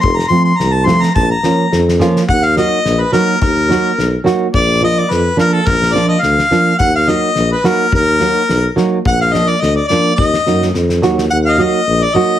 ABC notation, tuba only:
X:1
M:2/4
L:1/8
Q:"Swing 16ths" 1/4=106
K:none
V:1 name="Tuba" clef=bass
F,,, z C,,2 | _B,,, z F,,2 | _E,,2 _B,,, z | _E,,2 _C,, z |
_B,,,2 F,, z | _B,,,2 D,, z | _E,,2 _B,,, z | _E,,2 _C,, z |
_B,,,2 D,, z | _E,, _G,, F,, E,, | _E,,2 _B,,, z |]